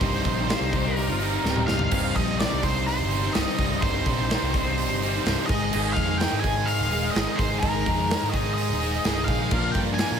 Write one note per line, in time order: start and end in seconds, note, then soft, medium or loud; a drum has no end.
0.00 0.20 C1 loud
0.00 0.49 C2 medium
0.00 0.48 G2 medium
0.00 0.24 C3 medium
0.00 0.22 D#3 medium
0.00 0.25 G3 loud
0.00 0.23 C4 medium
0.00 0.24 D#4 medium
0.00 1.91 D#4 medium
0.00 0.25 G4 medium
0.00 1.90 G4 medium
0.00 0.98 C5 medium
0.00 1.90 C5 medium
0.00 1.91 D#5 medium
0.00 kick loud
0.00 open hi-hat medium
0.23 0.53 A#1 medium
0.23 0.36 D#3 medium
0.23 0.50 G3 medium
0.23 0.37 C4 medium
0.23 0.36 D#4 medium
0.23 0.35 G4 medium
0.23 kick medium
0.23 open hi-hat medium
0.27 0.49 C3 medium
0.36 0.47 C4 medium
0.36 0.48 D#4 medium
0.36 0.48 G4 medium
0.47 0.97 G2 medium
0.47 0.60 C3 loud
0.47 0.60 D#3 loud
0.47 0.61 C4 loud
0.47 0.60 D#4 loud
0.47 0.58 G4 loud
0.47 0.61 F5 loud
0.47 snare loud
0.47 open hi-hat medium
0.51 0.73 G3 medium
0.59 1.09 C2 medium
0.59 0.72 C4 soft
0.59 0.73 D#4 medium
0.59 0.72 G4 medium
0.59 0.73 D#5 loud
0.72 1.21 C3 medium
0.72 1.08 D#3 medium
0.72 1.20 G3 medium
0.72 1.09 C4 medium
0.72 1.08 D#4 medium
0.72 1.06 G4 medium
0.72 0.86 C5 medium
0.72 kick medium
0.72 open hi-hat medium
0.85 0.97 A#4 medium
0.96 1.09 G4 medium
0.96 1.63 A#4 medium
0.96 open hi-hat medium
1.07 1.37 G1 loud
1.07 1.19 C4 soft
1.07 1.21 D#4 medium
1.07 1.22 F4 loud
1.07 1.20 G4 medium
1.19 1.43 C3 medium
1.19 1.32 D#3 medium
1.19 1.44 G3 medium
1.19 1.33 C4 medium
1.19 1.44 D#4 medium
1.19 1.31 D#4 medium
1.19 1.30 G4 medium
1.19 open hi-hat medium
1.31 1.44 C4 soft
1.31 1.44 D#4 medium
1.31 1.44 G4 medium
1.43 1.66 D1 medium
1.43 1.90 C2 medium
1.43 1.90 G2 medium
1.43 1.68 C3 medium
1.43 1.66 D#3 medium
1.43 1.91 G3 loud
1.43 1.68 C4 medium
1.43 1.67 C4 loud
1.43 1.68 D#4 medium
1.43 1.69 G4 medium
1.43 snare medium
1.56 mid tom medium
1.67 1.90 C1 medium
1.67 1.90 D#3 medium
1.67 1.92 G3 medium
1.67 1.91 C4 medium
1.67 1.92 D#4 medium
1.67 1.92 G4 medium
1.67 2.16 F5 medium
1.67 snare medium
1.71 1.92 C3 medium
1.79 floor tom loud
1.91 2.11 C1 medium
1.91 3.34 C2 medium
1.91 2.38 G2 loud
1.91 2.15 C3 medium
1.91 2.14 D#3 medium
1.91 2.16 G3 loud
1.91 2.15 C4 medium
1.91 2.16 D#4 medium
1.91 5.46 D#4 medium
1.91 5.46 G4 medium
1.91 2.16 G4 medium
1.91 5.46 C5 medium
1.91 5.46 D#5 medium
1.91 kick loud
1.91 crash loud
2.14 2.44 A#1 medium
2.14 2.40 C3 medium
2.14 2.28 D#3 medium
2.14 2.41 G3 medium
2.14 2.28 C4 medium
2.14 2.42 D#4 medium
2.14 2.39 D#5 medium
2.14 kick medium
2.14 open hi-hat medium
2.18 2.26 G4 medium
2.27 2.38 C4 soft
2.27 2.39 D#4 medium
2.27 2.39 G4 medium
2.38 2.87 G2 medium
2.38 2.51 C3 medium
2.38 2.51 D#3 medium
2.38 2.64 G3 medium
2.38 2.52 C4 medium
2.38 2.51 D#4 loud
2.38 2.50 G4 medium
2.38 2.62 D5 medium
2.38 snare loud
2.38 open hi-hat medium
2.51 3.01 C2 medium
2.51 2.62 C4 soft
2.51 2.63 D#4 medium
2.51 2.63 G4 medium
2.62 2.99 D#3 medium
2.62 3.11 G3 medium
2.62 2.99 C4 medium
2.62 2.99 D#4 medium
2.62 2.97 G4 medium
2.62 2.86 C5 medium
2.62 kick medium
2.62 open hi-hat medium
2.66 3.12 C3 medium
2.87 3.37 C5 medium
2.87 open hi-hat medium
2.98 3.28 G1 loud
2.98 3.10 C4 soft
2.98 3.12 D#4 soft
2.98 3.11 G4 medium
3.11 3.34 C3 medium
3.11 3.23 D#3 medium
3.11 3.36 G3 medium
3.11 3.23 C4 medium
3.11 3.22 D#4 medium
3.11 3.21 G4 medium
3.11 open hi-hat medium
3.22 3.34 C4 soft
3.22 3.35 D#4 medium
3.22 3.35 G4 medium
3.33 3.45 C1 loud
3.33 3.81 C2 medium
3.33 3.82 G2 loud
3.33 3.59 C3 medium
3.33 3.57 D#3 medium
3.33 3.83 G3 medium
3.33 3.58 C4 medium
3.33 3.59 D#4 medium
3.33 3.60 G4 medium
3.33 3.83 D#5 medium
3.33 snare loud
3.33 open hi-hat medium
3.58 3.78 C1 medium
3.58 3.82 C3 medium
3.58 3.81 D#3 medium
3.58 3.83 G3 medium
3.58 3.82 C4 medium
3.58 3.83 D#4 medium
3.58 3.83 G4 medium
3.58 kick medium
3.58 open hi-hat medium
3.81 4.01 C1 loud
3.81 4.30 C2 medium
3.81 4.30 G2 loud
3.81 4.06 C3 medium
3.81 4.04 D#3 medium
3.81 4.06 G3 loud
3.81 4.06 C4 medium
3.81 4.07 D#4 medium
3.81 4.07 G4 medium
3.81 5.53 C5 medium
3.81 kick loud
3.81 open hi-hat medium
4.05 4.34 A#1 loud
4.05 4.18 D#3 medium
4.05 4.31 G3 medium
4.05 4.19 C4 medium
4.05 4.18 D#4 medium
4.05 4.16 G4 medium
4.05 kick medium
4.05 open hi-hat medium
4.09 4.30 C3 medium
4.17 4.29 C4 soft
4.17 4.29 D#4 medium
4.17 4.30 G4 medium
4.29 4.78 G2 medium
4.29 4.53 C3 medium
4.29 4.52 D#3 medium
4.29 4.54 G3 medium
4.29 4.53 C4 medium
4.29 4.54 D#4 medium
4.29 4.55 G4 medium
4.29 snare loud
4.29 open hi-hat medium
4.42 4.90 C2 medium
4.53 5.04 C3 medium
4.53 4.89 D#3 medium
4.53 5.02 G3 medium
4.53 4.90 C4 medium
4.53 4.90 D#4 medium
4.53 4.88 G4 medium
4.53 kick medium
4.53 open hi-hat medium
4.78 open hi-hat medium
4.89 5.18 G1 medium
4.89 5.02 C4 soft
4.89 5.03 D#4 medium
4.89 5.01 G4 medium
5.02 5.26 C3 medium
5.02 5.13 D#3 medium
5.02 5.27 G3 medium
5.02 5.14 C4 medium
5.02 5.14 D#4 medium
5.02 5.12 G4 medium
5.02 open hi-hat medium
5.14 5.26 C4 medium
5.14 5.26 D#4 medium
5.14 5.25 G4 medium
5.26 5.35 C1 loud
5.26 5.48 C2 medium
5.26 5.48 G2 medium
5.26 5.49 C3 medium
5.26 5.49 D#3 medium
5.26 5.49 G3 loud
5.26 5.50 C4 medium
5.26 5.50 D#4 medium
5.26 5.51 G4 medium
5.26 snare loud
5.26 open hi-hat medium
5.46 5.68 G#1 medium
5.46 5.71 G#3 medium
5.46 9.49 D#4 medium
5.46 5.74 G#4 loud
5.46 9.49 G#4 medium
5.46 5.93 D#5 medium
5.46 9.48 D#5 medium
5.46 kick loud
5.50 5.73 G#2 medium
5.50 5.74 D#3 medium
5.50 5.72 A#3 medium
5.50 5.73 D#4 medium
5.50 5.74 G#4 medium
5.50 9.48 A#4 medium
5.50 open hi-hat medium
5.72 5.93 G#1 loud
5.72 7.14 G#2 medium
5.72 6.20 D#3 medium
5.72 5.96 G#3 medium
5.72 5.97 A#3 medium
5.72 5.97 D#4 medium
5.72 5.98 G#4 medium
5.72 crash loud
5.93 6.22 G#4 medium
5.93 6.19 F5 medium
5.93 kick medium
5.93 open hi-hat medium
5.97 6.25 F2 medium
5.97 6.09 G#3 medium
5.97 6.09 A#3 medium
5.97 6.08 D#4 medium
5.97 6.06 G#4 medium
6.08 6.19 A#3 soft
6.08 6.20 D#4 medium
6.08 6.20 G#4 medium
6.18 6.68 D#3 medium
6.18 6.42 G#3 medium
6.18 6.43 A#3 medium
6.18 6.44 D#4 medium
6.18 6.40 G5 medium
6.18 snare loud
6.18 open hi-hat medium
6.22 6.44 G#4 medium
6.32 6.82 G#2 medium
6.40 6.79 G#3 medium
6.40 6.67 G#5 loud
6.40 kick medium
6.40 open hi-hat medium
6.44 6.93 G#3 medium
6.44 6.80 A#3 medium
6.44 6.79 D#4 medium
6.44 6.78 G#4 medium
6.65 7.11 F5 loud
6.65 open hi-hat medium
6.79 7.08 D#1 loud
6.79 6.90 A#3 soft
6.79 6.92 D#4 soft
6.79 6.91 G#4 soft
6.91 7.03 G#3 medium
6.91 7.03 A#3 medium
6.91 7.03 D#4 medium
6.91 7.01 G#4 medium
6.91 open hi-hat medium
7.02 7.14 A#3 medium
7.02 7.15 D#4 medium
7.02 7.15 G#4 medium
7.11 7.61 G#2 loud
7.11 7.37 G#3 medium
7.11 7.38 A#3 medium
7.11 7.38 D#5 medium
7.15 7.25 G#1 medium
7.15 7.62 D#3 medium
7.15 7.39 D#4 medium
7.15 7.40 G#4 loud
7.15 snare loud
7.15 open hi-hat medium
7.36 7.58 G#1 medium
7.36 7.61 G#3 medium
7.36 7.62 A#3 medium
7.36 7.59 C5 medium
7.36 kick medium
7.36 open hi-hat medium
7.40 7.62 D#4 medium
7.40 7.63 G#4 medium
7.60 7.82 G#1 medium
7.60 8.10 G#2 medium
7.60 8.08 D#3 loud
7.60 7.84 G#3 medium
7.60 7.85 A#3 medium
7.60 7.87 D#4 medium
7.60 8.35 A#4 medium
7.60 kick loud
7.60 open hi-hat medium
7.64 7.87 G#4 medium
7.85 8.14 F2 loud
7.85 7.98 G#3 medium
7.85 7.98 A#3 medium
7.85 7.96 D#4 medium
7.85 7.95 G#4 medium
7.85 kick medium
7.85 open hi-hat medium
7.90 8.10 G#3 medium
7.96 8.08 A#3 soft
7.96 8.09 D#4 medium
7.96 8.09 G#4 medium
8.08 8.57 D#3 medium
8.08 8.21 G#3 medium
8.08 8.21 A#3 medium
8.08 8.22 D#4 medium
8.08 8.20 G#4 loud
8.08 snare loud
8.08 open hi-hat medium
8.21 8.71 G#2 medium
8.21 8.34 A#3 soft
8.21 8.34 D#4 medium
8.21 8.33 G#4 medium
8.29 8.80 G#4 medium
8.29 8.52 D#5 medium
8.34 8.69 G#3 soft
8.34 8.70 A#3 medium
8.34 8.70 D#4 medium
8.34 kick medium
8.34 open hi-hat medium
8.38 8.68 G#4 medium
8.54 9.29 D#5 loud
8.58 open hi-hat medium
8.69 8.98 D#1 loud
8.69 8.80 A#3 soft
8.69 8.82 D#4 soft
8.69 8.81 G#4 soft
8.81 8.93 G#3 medium
8.81 8.93 A#3 medium
8.81 8.93 D#4 medium
8.81 8.91 G#4 medium
8.81 open hi-hat medium
8.93 9.04 A#3 soft
8.93 9.05 D#4 soft
8.93 9.05 G#4 medium
9.04 9.26 C1 medium
9.04 9.50 G#2 medium
9.04 9.51 D#3 medium
9.04 9.26 G#3 medium
9.04 9.27 A#3 medium
9.04 9.28 D#4 medium
9.04 9.29 G#4 medium
9.04 snare loud
9.04 open hi-hat medium
9.24 9.50 A#1 medium
9.24 9.52 G#3 medium
9.24 9.71 F5 medium
9.24 kick medium
9.24 open hi-hat medium
9.28 9.52 A#3 medium
9.28 9.53 D#4 medium
9.28 9.53 G#4 medium
9.49 9.71 A#1 loud
9.49 9.76 A#2 medium
9.49 9.73 F3 medium
9.49 10.20 D4 medium
9.49 10.20 F4 medium
9.49 10.20 A#4 medium
9.49 10.20 D5 medium
9.49 kick loud
9.49 crash loud
9.53 9.75 A#3 medium
9.53 9.75 D4 medium
9.53 9.75 F4 loud
9.53 9.77 A#4 medium
9.72 10.04 G2 loud
9.72 9.87 F3 medium
9.72 10.00 F4 medium
9.72 9.79 G5 loud
9.72 kick medium
9.72 open hi-hat medium
9.76 9.88 A#3 medium
9.76 9.87 D4 medium
9.76 9.85 A#4 medium
9.87 9.99 D4 soft
9.87 9.99 A#4 medium
9.91 9.98 A#3 soft
9.91 10.20 G#5 loud
9.98 10.20 A#2 medium
9.98 10.20 F3 medium
9.98 10.20 A#3 medium
9.98 10.20 D4 medium
9.98 10.20 F4 medium
9.98 10.20 A#4 medium
9.98 snare loud
9.98 open hi-hat medium
10.11 10.20 A#2 medium